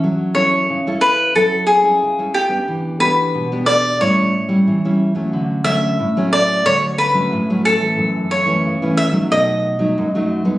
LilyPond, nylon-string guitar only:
\new Staff \with { instrumentName = "Nylon-string guitar" } { \time 4/4 \key fis \minor \tempo 4 = 91 << { <cis' e' a'>16 r16 <cis' e' a'>8. <cis' e' a'>8. <cis' e' a'>8. <cis' e' a'>8 <cis' e' a'>8 <b d' g'>16~ | <b d' g'>8 <b d' g'>8. <b d' g'>8. <g cis' e'>8 r16 <g cis' e'>8 <g cis' e'>8 <fis a cis'>16~ | <fis a cis'>8 <fis a cis'>8 r16 <fis a cis'>8. <fis a cis'>8 r16 <fis a cis'>8 <fis a cis'>8 <e a cis'>16~ | <e a cis'>8 r16 <e a cis'>8 <e a cis'>8 <fis a dis'>4 <fis a dis'>8 <fis a dis'>8 <gis b dis'>16 | } \\ { fis4 cis4 fis4 cis4 | e4 b,4 a,4 e4 | d4 a,4 d4 a,4 | fis,4 cis4 b,4 fis,4 | } >> }